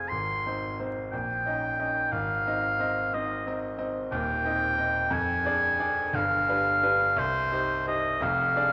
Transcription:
Already playing: grand piano F1 F2 C4 F4 G#4
0.09 grand piano G#1, oboe C6
0.46 grand piano C4 D#4 C5
0.80 grand piano C4 D#4 C5
1.12 grand piano A#1, oboe G5
1.46 grand piano C#4 D#4 D#5
1.79 grand piano C#4 D#4 D#5
2.12 grand piano G#1, oboe F5
2.47 grand piano C4 D#4 D#5
2.79 grand piano C4 D#4 D#5
3.13 grand piano C4 D#4 D#5, oboe D#5
3.47 grand piano C4 D#4 D#5
3.78 grand piano C4 D#4 D#5
4.11 grand piano D#1 D#2, oboe G5
4.45 grand piano C4 D#4 D#5
4.78 grand piano C4 D#4 D#5
5.11 grand piano F2, oboe G#5
5.45 grand piano D4 G#4 D5
5.79 grand piano D4 G#4 D5
6.13 grand piano G1 G2, oboe F5
6.49 grand piano D4 G4 B4
6.83 grand piano D4 G4 B4
7.16 grand piano C2, oboe C5
7.52 grand piano D#4 G4 C5
7.87 grand piano D#4 G4 C5, oboe D#5
8.20 grand piano F1 F2, oboe F5
8.56 grand piano D4 G#4 D5

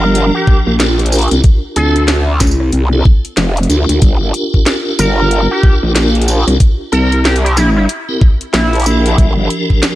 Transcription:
Already playing: wobble bass G1, tonewheel organ F3 D4 G4 A#4, analog synth lead A#4
0.15 closed hi-hat
0.35 analog synth lead G4
0.47 kick
0.67 wobble bass A#1
0.79 tonewheel organ D4 F4 G4 A#4, snare, closed hi-hat
0.99 closed hi-hat
1.06 closed hi-hat
1.12 tonewheel organ D4 F4 G4 A#4, closed hi-hat, tambourine
1.15 closed hi-hat
1.19 closed hi-hat
1.22 closed hi-hat
1.28 wobble bass C2, closed hi-hat
1.31 closed hi-hat
1.44 kick, closed hi-hat
1.76 wobble bass D2, tonewheel organ C4 D4 F4 A4, analog synth lead A4, closed hi-hat
1.96 closed hi-hat
2.08 snare, closed hi-hat
2.40 wobble bass C#2, kick, snare, closed hi-hat, tambourine
2.47 tambourine
2.51 tambourine
2.60 cross-stick
2.72 wobble bass C2, closed hi-hat
2.93 tonewheel organ C4 D4 F4 A4
3.05 kick
3.25 closed hi-hat
3.37 wobble bass F1, snare, closed hi-hat
3.57 closed hi-hat
3.63 closed hi-hat
3.69 wobble bass D2, tonewheel organ D4 F4 G4 A#4, closed hi-hat, tambourine
3.89 wobble bass D2, closed hi-hat
4.02 wobble bass G1, kick, closed hi-hat
4.34 closed hi-hat
4.54 kick
4.66 snare, closed hi-hat
4.99 wobble bass G1, analog synth lead A#4, closed hi-hat, tambourine
5.31 closed hi-hat
5.51 analog synth lead G4
5.63 kick
5.83 wobble bass A#1
5.96 tonewheel organ D4 F4 G4 A#4, snare, closed hi-hat
6.15 closed hi-hat
6.22 closed hi-hat
6.28 tonewheel organ D4 F4 G4 A#4, closed hi-hat, tambourine
6.47 wobble bass C2, cross-stick, closed hi-hat
6.60 kick, closed hi-hat
6.92 wobble bass C2, tonewheel organ C4 E4 G4 A#4, analog synth lead A#4, closed hi-hat
7.12 closed hi-hat
7.25 analog synth lead G4, snare, closed hi-hat
7.36 closed hi-hat
7.44 analog synth lead G4, closed hi-hat
7.56 analog synth lead E4, snare, closed hi-hat, tambourine
7.76 analog synth lead E4, cross-stick
7.89 closed hi-hat
8.09 tonewheel organ C4 E4 G4 A#4
8.21 kick
8.41 closed hi-hat
8.53 wobble bass A#1, analog synth lead E4, snare, closed hi-hat
8.73 closed hi-hat
8.75 closed hi-hat
8.80 closed hi-hat
8.82 closed hi-hat
8.84 tonewheel organ F3, closed hi-hat
8.86 tonewheel organ D4 G4 A#4, closed hi-hat, tambourine
9.06 closed hi-hat
9.18 wobble bass G1, kick, closed hi-hat
9.50 closed hi-hat
9.70 kick
9.83 snare, closed hi-hat

